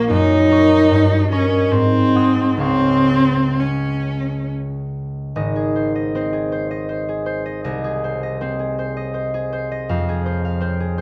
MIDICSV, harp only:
0, 0, Header, 1, 2, 480
1, 0, Start_track
1, 0, Key_signature, -5, "major"
1, 0, Tempo, 816327
1, 64, Time_signature, 3, 2, 24, 8
1, 1021, Tempo, 928793
1, 1981, Tempo, 886263
1, 2941, Key_signature, -4, "major"
1, 2941, Tempo, 758534
1, 5341, Tempo, 722892
1, 6571, End_track
2, 0, Start_track
2, 0, Title_t, "Harp"
2, 0, Program_c, 0, 46
2, 0, Note_on_c, 0, 34, 60
2, 0, Note_on_c, 0, 70, 43
2, 0, Note_on_c, 0, 77, 44
2, 0, Note_on_c, 0, 85, 51
2, 58, Note_on_c, 0, 42, 55
2, 84, Note_off_c, 0, 34, 0
2, 85, Note_off_c, 0, 77, 0
2, 292, Note_off_c, 0, 70, 0
2, 299, Note_off_c, 0, 85, 0
2, 299, Note_on_c, 0, 70, 41
2, 302, Note_on_c, 0, 75, 35
2, 306, Note_on_c, 0, 85, 48
2, 535, Note_on_c, 0, 43, 56
2, 555, Note_off_c, 0, 42, 0
2, 767, Note_off_c, 0, 70, 0
2, 771, Note_off_c, 0, 75, 0
2, 771, Note_off_c, 0, 85, 0
2, 774, Note_on_c, 0, 70, 43
2, 776, Note_on_c, 0, 75, 42
2, 779, Note_on_c, 0, 85, 49
2, 1008, Note_on_c, 0, 44, 49
2, 1038, Note_off_c, 0, 43, 0
2, 1038, Note_off_c, 0, 70, 0
2, 1040, Note_off_c, 0, 85, 0
2, 1235, Note_on_c, 0, 68, 41
2, 1237, Note_on_c, 0, 78, 39
2, 1240, Note_on_c, 0, 87, 43
2, 1452, Note_on_c, 0, 37, 50
2, 1453, Note_off_c, 0, 68, 0
2, 1459, Note_on_c, 0, 68, 39
2, 1465, Note_on_c, 0, 77, 38
2, 1470, Note_on_c, 0, 85, 36
2, 1504, Note_off_c, 0, 44, 0
2, 1505, Note_off_c, 0, 78, 0
2, 1506, Note_off_c, 0, 87, 0
2, 1511, Note_off_c, 0, 75, 0
2, 2936, Note_on_c, 0, 32, 48
2, 2938, Note_off_c, 0, 37, 0
2, 2938, Note_on_c, 0, 75, 43
2, 2946, Note_off_c, 0, 77, 0
2, 2949, Note_off_c, 0, 85, 0
2, 3054, Note_off_c, 0, 68, 0
2, 3062, Note_on_c, 0, 68, 40
2, 3187, Note_on_c, 0, 72, 36
2, 3305, Note_off_c, 0, 75, 0
2, 3313, Note_on_c, 0, 75, 42
2, 3429, Note_off_c, 0, 72, 0
2, 3436, Note_on_c, 0, 60, 42
2, 3439, Note_on_c, 0, 72, 46
2, 3541, Note_off_c, 0, 68, 0
2, 3549, Note_on_c, 0, 68, 36
2, 3664, Note_off_c, 0, 72, 0
2, 3671, Note_on_c, 0, 72, 48
2, 3782, Note_off_c, 0, 75, 0
2, 3789, Note_on_c, 0, 75, 43
2, 3896, Note_off_c, 0, 72, 0
2, 3904, Note_on_c, 0, 72, 47
2, 4021, Note_off_c, 0, 68, 0
2, 4029, Note_on_c, 0, 68, 38
2, 4131, Note_off_c, 0, 72, 0
2, 4139, Note_on_c, 0, 72, 45
2, 4256, Note_off_c, 0, 75, 0
2, 4263, Note_on_c, 0, 75, 44
2, 4374, Note_off_c, 0, 75, 0
2, 4382, Note_on_c, 0, 75, 49
2, 4385, Note_on_c, 0, 36, 48
2, 4394, Note_off_c, 0, 32, 0
2, 4499, Note_off_c, 0, 68, 0
2, 4506, Note_on_c, 0, 68, 44
2, 4625, Note_off_c, 0, 72, 0
2, 4633, Note_on_c, 0, 72, 43
2, 4746, Note_off_c, 0, 75, 0
2, 4753, Note_on_c, 0, 75, 46
2, 4858, Note_off_c, 0, 72, 0
2, 4861, Note_off_c, 0, 60, 0
2, 4865, Note_on_c, 0, 72, 47
2, 4868, Note_on_c, 0, 60, 43
2, 4975, Note_off_c, 0, 68, 0
2, 4982, Note_on_c, 0, 68, 35
2, 5097, Note_off_c, 0, 72, 0
2, 5105, Note_on_c, 0, 72, 44
2, 5211, Note_off_c, 0, 75, 0
2, 5219, Note_on_c, 0, 75, 39
2, 5321, Note_off_c, 0, 72, 0
2, 5328, Note_on_c, 0, 72, 43
2, 5453, Note_off_c, 0, 68, 0
2, 5461, Note_on_c, 0, 68, 40
2, 5577, Note_off_c, 0, 72, 0
2, 5585, Note_on_c, 0, 72, 47
2, 5702, Note_off_c, 0, 75, 0
2, 5710, Note_on_c, 0, 75, 46
2, 5828, Note_on_c, 0, 41, 50
2, 5829, Note_on_c, 0, 77, 47
2, 5851, Note_off_c, 0, 75, 0
2, 5855, Note_off_c, 0, 36, 0
2, 5948, Note_off_c, 0, 68, 0
2, 5956, Note_on_c, 0, 68, 43
2, 6063, Note_off_c, 0, 72, 0
2, 6071, Note_on_c, 0, 72, 42
2, 6188, Note_off_c, 0, 77, 0
2, 6196, Note_on_c, 0, 77, 43
2, 6295, Note_off_c, 0, 60, 0
2, 6295, Note_off_c, 0, 72, 0
2, 6301, Note_on_c, 0, 60, 42
2, 6306, Note_on_c, 0, 72, 46
2, 6423, Note_off_c, 0, 68, 0
2, 6431, Note_on_c, 0, 68, 42
2, 6541, Note_off_c, 0, 72, 0
2, 6549, Note_on_c, 0, 72, 44
2, 6571, Note_off_c, 0, 41, 0
2, 6571, Note_off_c, 0, 60, 0
2, 6571, Note_off_c, 0, 68, 0
2, 6571, Note_off_c, 0, 72, 0
2, 6571, Note_off_c, 0, 77, 0
2, 6571, End_track
0, 0, End_of_file